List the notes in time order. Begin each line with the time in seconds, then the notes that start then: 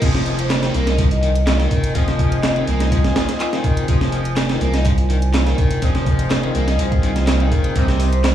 0.01 F1 F3 C4 D#4 F4 G#4 C5 D#5 G#5, kick, closed hi-hat, crash, downlifter
0.15 snare, closed hi-hat
0.25 C4 D#4 F4 G#4, closed hi-hat
0.39 C5, closed hi-hat
0.50 C5, snare, clap, closed hi-hat
0.63 D#3, snare, closed hi-hat
0.74 C2 A#3 A#4, closed hi-hat
0.87 D#4, snare, closed hi-hat
0.98 F3, kick, closed hi-hat
1.11 D#5, closed hi-hat
1.23 D#3, closed hi-hat
1.35 closed hi-hat
1.47 F4, snare, clap, closed hi-hat
1.60 D#3, snare, closed hi-hat
1.71 F1, kick, closed hi-hat
1.84 closed hi-hat
1.95 F3 C4 D#4 F4 G#4, kick, closed hi-hat
2.08 snare, closed hi-hat
2.19 C4 D#4 F4 G#4, kick, closed hi-hat
2.32 D#5, closed hi-hat
2.43 D#5, snare, clap, closed hi-hat
2.56 D#3, closed hi-hat
2.67 C2 A#3, closed hi-hat
2.80 D#4, snare, closed hi-hat
2.92 F3, kick, closed hi-hat
3.04 snare, closed hi-hat
3.16 G#1 D#3, snare, closed hi-hat
3.29 snare, closed hi-hat
3.40 F4, clap, closed hi-hat
3.53 D#3, snare, closed hi-hat
3.64 F1, kick, closed hi-hat
3.77 closed hi-hat
3.88 F1 F3 C4 D#4 F4 G#4 D5, kick, closed hi-hat
4.01 snare, closed hi-hat
4.12 C4 D#4 F4 G#4, closed hi-hat
4.25 closed hi-hat
4.36 snare, clap, closed hi-hat
4.49 D#3, snare, closed hi-hat
4.61 C2 A#3, closed hi-hat
4.74 D#4, snare, closed hi-hat
4.85 F3, kick, closed hi-hat
4.98 closed hi-hat
5.10 D#3, closed hi-hat
5.22 closed hi-hat
5.34 F4, snare, clap, closed hi-hat
5.47 D#3, snare, closed hi-hat
5.58 F1, kick, closed hi-hat
5.71 closed hi-hat
5.82 F3 C4 D#4 F4 G#4, kick, closed hi-hat
5.95 snare, closed hi-hat
6.06 C4 D#4 F4 G#4, kick, closed hi-hat
6.19 closed hi-hat
6.30 snare, clap, closed hi-hat
6.43 D#3, closed hi-hat
6.55 C2 A#3, closed hi-hat
6.68 D#4, snare, closed hi-hat
6.79 C2 F3, closed hi-hat
6.92 kick, closed hi-hat
7.02 C2 D#3, closed hi-hat
7.16 snare, closed hi-hat
7.27 F4, snare, clap, closed hi-hat
7.40 D#3, closed hi-hat
7.52 F1, kick, closed hi-hat
7.64 closed hi-hat
7.76 C2 C3 G3 A#3 C4 D#4 G4 D#5 A#5, kick, closed hi-hat
7.88 snare, closed hi-hat
8.00 G3 A#3 C4 D#4, closed hi-hat, open hi-hat
8.12 C5, closed hi-hat
8.24 C5, snare, clap, closed hi-hat